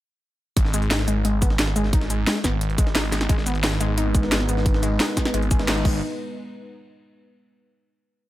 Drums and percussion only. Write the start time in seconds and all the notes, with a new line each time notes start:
0.57 kick, closed hi-hat
0.65 snare
0.74 closed hi-hat, shaker
0.82 closed hi-hat
0.91 snare, closed hi-hat
0.99 snare
1.08 closed hi-hat, shaker
1.25 closed hi-hat
1.42 kick, closed hi-hat, shaker
1.50 snare
1.59 snare, closed hi-hat
1.67 snare
1.76 closed hi-hat, shaker
1.84 snare
1.93 kick, closed hi-hat
2.02 snare
2.10 closed hi-hat, shaker
2.27 snare, closed hi-hat
2.36 snare
2.44 kick, snare, closed hi-hat, shaker
2.61 closed hi-hat
2.70 closed hi-hat
2.78 kick, closed hi-hat, shaker
2.87 snare
2.95 snare, closed hi-hat
3.04 snare
3.12 snare, closed hi-hat, shaker
3.21 snare, closed hi-hat
3.29 kick, closed hi-hat
3.38 snare
3.46 closed hi-hat, shaker
3.55 closed hi-hat
3.63 snare, closed hi-hat
3.72 snare
3.81 closed hi-hat, shaker
3.98 closed hi-hat
4.15 kick, closed hi-hat, shaker
4.23 snare
4.32 snare, closed hi-hat
4.40 snare
4.49 closed hi-hat, shaker
4.57 snare
4.66 kick, closed hi-hat
4.74 snare
4.83 closed hi-hat, shaker
5.00 snare, closed hi-hat
5.08 snare
5.17 kick, snare, closed hi-hat, shaker
5.25 snare
5.34 closed hi-hat
5.42 closed hi-hat
5.51 kick, closed hi-hat, shaker
5.60 snare
5.68 snare, closed hi-hat
5.77 snare
5.85 kick, crash